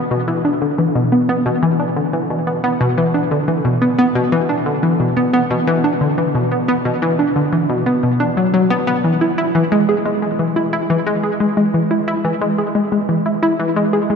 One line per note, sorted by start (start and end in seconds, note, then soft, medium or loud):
0.11 0.18 B2 loud
0.28 0.44 E3 loud
0.45 0.56 D4 medium
0.62 0.68 D3 medium
0.78 0.89 E3 medium
0.95 1.11 B2 medium
1.12 1.28 B3 medium
1.29 1.36 B3 medium
1.46 1.52 B2 loud
1.63 1.79 E3 medium
1.80 1.91 D4 medium
1.97 2.03 D3 medium
2.13 2.24 E3 medium
2.30 2.46 B2 medium
2.47 2.63 B3 medium
2.64 2.70 B3 medium
2.81 2.87 B2 loud
2.98 3.14 E3 medium
3.14 3.25 D4 medium
3.31 3.38 D3 medium
3.48 3.59 E3 medium
3.65 3.81 B2 medium
3.82 3.97 B3 medium
3.99 4.05 B3 loud
4.15 4.22 B2 loud
4.32 4.48 E3 medium
4.49 4.60 D4 medium
4.66 4.73 D3 medium
4.83 4.94 E3 medium
5.00 5.16 B2 medium
5.17 5.32 B3 medium
5.33 5.40 B3 medium
5.50 5.57 B2 loud
5.67 5.83 E3 loud
5.84 5.95 D4 medium
6.01 6.08 D3 medium
6.18 6.29 E3 medium
6.35 6.51 B2 medium
6.52 6.67 B3 medium
6.68 6.75 B3 loud
6.85 6.92 B2 loud
7.02 7.18 E3 loud
7.19 7.30 D4 medium
7.36 7.42 D3 medium
7.53 7.64 E3 medium
7.69 7.85 B2 medium
7.86 8.02 B3 medium
8.03 8.19 B2 medium
8.20 8.31 D4 medium
8.37 8.48 F#3 medium
8.54 8.65 F#3 loud
8.70 8.86 B3 loud
8.87 8.98 B3 loud
9.04 9.20 E3 medium
9.21 9.37 E4 medium
9.38 9.45 E4 medium
9.55 9.62 E3 loud
9.72 9.88 G#3 loud
9.89 10.00 G#4 medium
10.06 10.12 G#3 medium
10.22 10.33 G#3 medium
10.39 10.55 E3 medium
10.56 10.72 E4 medium
10.73 10.80 E4 medium
10.90 10.96 E3 loud
11.07 11.23 G#3 loud
11.23 11.34 G#4 medium
11.40 11.47 G#3 medium
11.57 11.68 G#3 medium
11.74 11.90 E3 medium
11.91 12.07 E4 medium
12.08 12.14 E4 loud
12.25 12.31 E3 loud
12.41 12.57 G#3 medium
12.58 12.69 G#4 medium
12.75 12.82 G#3 medium
12.92 13.03 G#3 medium
13.09 13.25 E3 medium
13.26 13.41 E4 medium
13.43 13.49 E4 medium
13.60 13.66 E3 loud
13.76 13.92 G#3 medium
13.93 14.04 G#4 medium
14.10 14.16 G#3 medium